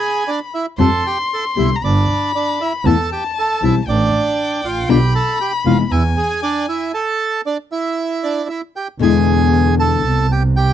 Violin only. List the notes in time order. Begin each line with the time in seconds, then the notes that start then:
Already playing: B5
0.78 C6
1.76 A#5
1.82 B5
2.85 A5
3.87 G5
4.90 B5
5.91 G#5